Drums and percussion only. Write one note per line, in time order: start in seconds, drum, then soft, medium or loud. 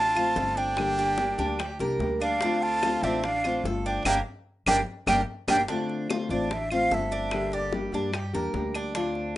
0.15 high bongo soft
0.15 claves medium
0.36 high bongo soft
0.36 low bongo medium
0.77 high bongo medium
0.77 claves medium
0.98 high bongo soft
1.18 high bongo medium
1.38 high bongo soft
1.59 high bongo medium
1.59 claves medium
1.79 high bongo soft
2.00 high bongo soft
2.00 low bongo medium
2.22 claves medium
2.41 high bongo medium
2.62 high bongo soft
2.83 high bongo medium
2.83 claves medium
3.03 high bongo soft
3.24 high bongo medium
3.44 high bongo soft
3.44 claves medium
3.65 high bongo soft
3.65 low bongo medium
4.05 low bongo loud
4.05 claves loud
4.67 low bongo loud
4.67 claves loud
5.07 low bongo loud
5.07 claves loud
5.48 low bongo loud
5.48 claves medium
5.68 high bongo medium
5.89 high bongo soft
6.10 high bongo medium
6.10 claves medium
6.30 high bongo soft
6.51 high bongo medium
6.71 claves medium
6.92 high bongo soft
6.92 low bongo medium
7.11 high bongo soft
7.31 high bongo medium
7.31 claves medium
7.52 high bongo soft
7.72 high bongo medium
7.94 high bongo soft
8.14 high bongo medium
8.14 claves medium
8.54 high bongo soft
8.54 low bongo medium
8.75 high bongo soft
8.75 claves medium
8.95 high bongo medium
9.15 high bongo soft